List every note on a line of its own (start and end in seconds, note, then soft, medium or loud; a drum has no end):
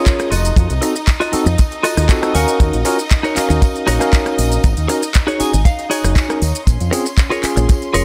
0.00 0.30 C#4 medium
0.00 6.68 D#4 medium
0.00 0.29 F4 loud
0.00 0.30 F4 medium
0.00 0.30 G#4 loud
0.00 0.31 G#4 loud
0.00 0.31 A#4 medium
0.00 0.32 C#5 loud
0.00 6.68 D#5 medium
0.06 kick loud
0.06 clap loud
0.06 closed hi-hat medium
0.06 tambourine medium
0.06 shaker medium
0.19 cross-stick medium
0.19 closed hi-hat soft
0.19 tambourine soft
0.19 shaker soft
0.31 0.50 F1 medium
0.31 0.72 F4 medium
0.31 0.72 F#4 medium
0.31 0.73 A4 medium
0.31 0.73 D#5 medium
0.31 open hi-hat loud
0.31 tambourine medium
0.44 closed hi-hat medium
0.44 tambourine soft
0.44 shaker medium
0.56 0.66 F2 loud
0.56 kick loud
0.56 closed hi-hat medium
0.56 tambourine soft
0.56 shaker medium
0.70 0.79 C2 medium
0.70 closed hi-hat medium
0.70 tambourine soft
0.70 shaker soft
0.81 0.93 C4 medium
0.81 0.93 D#4 medium
0.81 0.93 F#4 medium
0.81 0.93 A4 medium
0.81 muted clean electric guitar stroke loud
0.81 open hi-hat loud
0.81 tambourine loud
0.95 muted clean electric guitar stroke soft
0.95 tambourine soft
0.95 shaker medium
1.07 muted clean electric guitar stroke soft
1.07 kick loud
1.07 clap loud
1.07 closed hi-hat medium
1.07 tambourine medium
1.07 shaker medium
1.20 1.33 F4 loud
1.20 1.33 F#4 medium
1.20 1.33 A4 medium
1.20 1.33 D#5 loud
1.20 open hi-hat medium
1.20 tambourine soft
1.20 shaker soft
1.32 1.44 C4 loud
1.32 1.44 D#4 medium
1.32 1.44 F#4 loud
1.32 1.44 A4 loud
1.32 muted fingered electric bass stroke soft
1.32 open hi-hat loud
1.32 tambourine medium
1.45 1.55 F2 loud
1.45 muted clean electric guitar stroke medium
1.45 closed hi-hat soft
1.45 tambourine soft
1.45 shaker medium
1.58 muted clean electric guitar stroke soft
1.58 kick loud
1.58 closed hi-hat medium
1.58 tambourine medium
1.58 shaker medium
1.71 closed hi-hat soft
1.71 tambourine soft
1.71 shaker soft
1.83 2.33 F4 loud
1.83 2.33 F#4 loud
1.83 2.34 A4 loud
1.83 2.08 D#5 loud
1.83 open hi-hat loud
1.83 tambourine medium
1.97 2.06 D#2 medium
1.97 cross-stick medium
1.97 open hi-hat medium
1.97 tambourine soft
1.97 shaker medium
2.08 2.19 C4 medium
2.08 2.19 D#4 medium
2.08 2.19 F#4 medium
2.08 2.19 A4 loud
2.08 2.33 D#5 medium
2.08 kick loud
2.08 clap loud
2.08 closed hi-hat medium
2.08 tambourine medium
2.08 shaker medium
2.21 2.32 C4 medium
2.21 2.33 D#4 medium
2.21 2.33 F#4 medium
2.21 2.33 A4 loud
2.21 cross-stick medium
2.21 closed hi-hat soft
2.21 tambourine soft
2.21 shaker soft
2.34 2.44 D#2 loud
2.34 2.82 C#4 medium
2.34 2.75 D#4 loud
2.34 2.76 F#4 medium
2.34 2.83 F#4 medium
2.34 2.76 A#4 medium
2.34 2.83 A#4 loud
2.34 2.76 C#5 loud
2.34 2.83 F5 medium
2.34 2.58 G#5 medium
2.34 open hi-hat loud
2.34 tambourine loud
2.48 closed hi-hat medium
2.48 shaker medium
2.60 2.70 D#2 loud
2.60 kick loud
2.60 closed hi-hat medium
2.60 tambourine soft
2.60 shaker medium
2.73 2.82 A#1 loud
2.73 closed hi-hat medium
2.73 tambourine soft
2.73 shaker soft
2.85 2.96 C#4 loud
2.85 2.96 F4 medium
2.85 2.97 F#4 medium
2.85 2.97 A#4 loud
2.85 muted clean electric guitar stroke loud
2.85 open hi-hat loud
2.85 tambourine loud
2.98 muted clean electric guitar stroke soft
2.98 tambourine soft
2.98 shaker medium
3.10 muted clean electric guitar stroke soft
3.10 kick loud
3.10 clap loud
3.10 closed hi-hat medium
3.10 tambourine medium
3.10 shaker medium
3.23 3.36 D#4 loud
3.23 3.36 F#4 medium
3.23 3.36 A#4 medium
3.23 3.37 C#5 loud
3.23 closed hi-hat soft
3.23 tambourine soft
3.23 shaker soft
3.35 3.97 C#4 medium
3.35 3.98 F#4 medium
3.35 3.98 A#4 loud
3.35 3.97 F5 medium
3.35 muted fingered electric bass stroke soft
3.35 clap medium
3.35 open hi-hat loud
3.35 tambourine loud
3.49 3.59 D#2 loud
3.49 muted clean electric guitar stroke medium
3.49 closed hi-hat soft
3.49 tambourine soft
3.49 shaker medium
3.61 muted clean electric guitar stroke soft
3.61 kick loud
3.61 closed hi-hat medium
3.61 tambourine medium
3.61 shaker medium
3.75 closed hi-hat soft
3.75 tambourine soft
3.75 shaker soft
3.87 3.97 A#1 medium
3.87 4.38 D#4 loud
3.87 4.38 F#4 loud
3.87 4.38 A#4 loud
3.87 4.38 C#5 loud
3.87 open hi-hat loud
3.87 tambourine medium
3.99 4.61 C#4 medium
3.99 4.62 F#4 medium
3.99 4.63 A#4 loud
3.99 4.62 F5 medium
3.99 cross-stick medium
3.99 closed hi-hat soft
3.99 tambourine soft
3.99 shaker medium
4.13 kick loud
4.13 clap loud
4.13 closed hi-hat medium
4.13 tambourine medium
4.13 shaker medium
4.26 cross-stick medium
4.26 closed hi-hat soft
4.26 tambourine soft
4.26 shaker soft
4.38 4.57 A#1 medium
4.38 open hi-hat loud
4.38 tambourine loud
4.52 closed hi-hat medium
4.52 tambourine soft
4.52 shaker medium
4.64 4.73 G#1 loud
4.64 kick loud
4.64 closed hi-hat medium
4.64 tambourine medium
4.64 shaker soft
4.77 4.86 D#2 loud
4.77 closed hi-hat medium
4.77 tambourine soft
4.77 shaker soft
4.88 5.00 C#4 medium
4.88 5.00 D#4 medium
4.88 5.00 F#4 medium
4.88 5.01 A#4 medium
4.88 muted clean electric guitar stroke loud
4.88 open hi-hat loud
4.88 tambourine medium
5.02 muted clean electric guitar stroke soft
5.02 tambourine soft
5.02 shaker medium
5.14 muted clean electric guitar stroke soft
5.14 kick loud
5.14 clap loud
5.14 closed hi-hat medium
5.14 tambourine medium
5.14 shaker medium
5.27 5.39 D#4 loud
5.27 5.40 F#4 loud
5.27 5.40 G#4 medium
5.27 5.40 C#5 loud
5.27 open hi-hat medium
5.27 tambourine soft
5.27 shaker soft
5.39 5.51 C#4 loud
5.39 5.51 D#4 medium
5.39 5.51 F#4 medium
5.39 5.51 G#4 loud
5.39 5.64 G#5 medium
5.39 muted fingered electric bass stroke soft
5.39 open hi-hat loud
5.39 tambourine loud
5.52 5.62 G#1 loud
5.52 muted clean electric guitar stroke medium
5.52 closed hi-hat soft
5.52 tambourine soft
5.52 shaker medium
5.65 5.89 F5 medium
5.65 muted clean electric guitar stroke soft
5.65 kick loud
5.65 closed hi-hat medium
5.65 tambourine medium
5.65 shaker medium
5.79 closed hi-hat soft
5.79 tambourine soft
5.79 shaker soft
5.90 6.41 D#4 loud
5.90 6.41 F#4 loud
5.90 6.42 G#4 medium
5.90 6.15 C#5 loud
5.90 6.14 D#5 medium
5.90 open hi-hat loud
5.90 tambourine medium
6.04 6.13 F#1 medium
6.04 cross-stick medium
6.04 open hi-hat medium
6.04 tambourine soft
6.04 shaker medium
6.16 6.63 C#5 medium
6.16 kick loud
6.16 clap loud
6.16 closed hi-hat medium
6.16 tambourine medium
6.16 shaker medium
6.29 6.39 C#4 medium
6.29 6.39 D#4 medium
6.29 6.39 F#4 medium
6.29 6.40 A#4 medium
6.29 cross-stick medium
6.29 closed hi-hat soft
6.29 tambourine soft
6.29 shaker soft
6.42 6.51 D#2 loud
6.42 open hi-hat loud
6.42 tambourine medium
6.55 closed hi-hat soft
6.55 tambourine soft
6.55 shaker medium
6.67 6.77 A#1 loud
6.67 8.04 C#4 medium
6.67 8.04 C6 medium
6.67 kick loud
6.67 closed hi-hat medium
6.67 tambourine medium
6.67 shaker medium
6.80 6.89 F2 medium
6.80 closed hi-hat medium
6.80 tambourine soft
6.80 shaker soft
6.91 7.03 C4 loud
6.91 7.03 C#4 medium
6.91 7.04 F4 medium
6.91 7.04 G#4 loud
6.91 muted clean electric guitar stroke loud
6.91 open hi-hat loud
6.91 tambourine medium
7.05 muted clean electric guitar stroke soft
7.05 tambourine soft
7.05 shaker medium
7.17 muted clean electric guitar stroke soft
7.17 kick loud
7.17 clap loud
7.17 closed hi-hat medium
7.17 tambourine medium
7.17 shaker medium
7.30 7.43 F4 loud
7.30 7.43 G#4 medium
7.30 7.43 A#4 medium
7.30 7.44 C#5 loud
7.30 closed hi-hat soft
7.30 tambourine soft
7.30 shaker soft
7.43 8.04 C#4 medium
7.43 8.04 F4 medium
7.43 8.04 G#4 loud
7.43 muted fingered electric bass stroke soft
7.43 clap medium
7.43 open hi-hat loud
7.43 tambourine medium
7.56 7.65 A#1 loud
7.56 muted clean electric guitar stroke medium
7.56 closed hi-hat soft
7.56 tambourine soft
7.56 shaker medium
7.69 muted clean electric guitar stroke soft
7.69 kick loud
7.69 closed hi-hat medium
7.69 tambourine medium
7.69 shaker medium
7.82 closed hi-hat soft
7.82 tambourine soft
7.82 shaker soft
7.94 8.04 F1 medium
7.94 8.04 F4 loud
7.94 8.04 G#4 medium
7.94 8.04 A#4 loud
7.94 8.04 C#5 loud
7.94 open hi-hat loud
7.94 tambourine medium